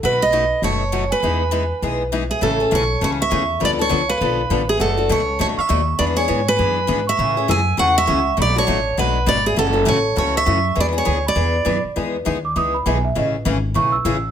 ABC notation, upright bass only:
X:1
M:4/4
L:1/8
Q:"Swing" 1/4=201
K:E
V:1 name="Upright bass" clef=bass
B,,,4 F,,,4 | E,,4 B,,,4 | [K:A] A,,,2 B,,,2 C,,2 E,,2 | D,,2 C,,2 B,,,2 A,,,2 |
F,,,2 C,,2 D,, z ^D,,2 | E,,2 G,,2 F,,2 G,,2 | A,,2 F,,2 E,,2 C,,2 | B,,,2 A,,,2 B,,,2 G,,,2 |
F,,,2 A,,,2 C,,2 F,,2 | E,,2 D,,2 E,,2 F,, z | [K:E] E,,2 D,,2 C,,2 B,,,2 | A,,,2 G,,,2 B,,,2 A,,,2 |]